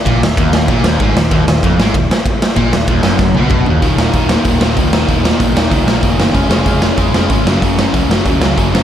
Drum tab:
RD |x-x-x-x-|x-x-x-x-|x-x-----|--------|
HH |--------|--------|--------|o-o-o-o-|
SD |-o-o-o-o|-o-o-o-o|-o-oo---|-o-o-o-o|
T1 |--------|--------|-----o--|--------|
T2 |--------|--------|------o-|--------|
FT |--------|--------|-------o|--------|
BD |o-o-o-o-|o-o-o-o-|o-o-o-o-|o-o-o-o-|

RD |--------|--------|--------|
HH |o-o-o-o-|o-o-o-o-|o-o-o-o-|
SD |-o-o-o-o|-o-o-o-o|-o-o-o-o|
T1 |--------|--------|--------|
T2 |--------|--------|--------|
FT |--------|--------|--------|
BD |o-o-o-o-|o-o-o-o-|o-o-o-o-|